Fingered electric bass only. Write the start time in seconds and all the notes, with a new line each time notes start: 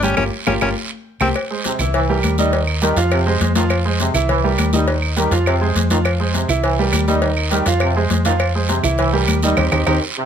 Already playing: G1
0.17 G1
0.47 G1
0.61 G1
1.20 C2
1.79 C2
2.23 D#2
2.96 F2
3.40 F2
4.14 C2
4.58 D#2
5.31 F2
5.75 F2
6.48 C2
6.92 D#2
7.66 F2
8.10 F2
8.83 C2
9.27 D#2
9.57 D#2
9.72 D#2
9.86 D#2